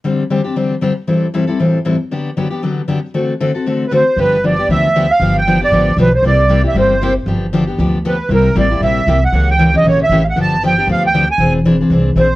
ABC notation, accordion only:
X:1
M:4/4
L:1/16
Q:"Swing" 1/4=232
K:Dmix
V:1 name="Accordion"
z16 | z16 | z16 | z8 z3 B c4 |
[K:Gmix] B4 d4 e6 f2- | f2 g4 d6 B2 c2 | d6 e2 c6 z2 | z12 B4 |
_B4 d4 e6 ^f2- | ^f2 g4 _e2 ^c2 =e3- e/2 =f/2 ^f2 | a4 g4 f2 g4 _a2- | _a2 z8 z2 ^B4 |]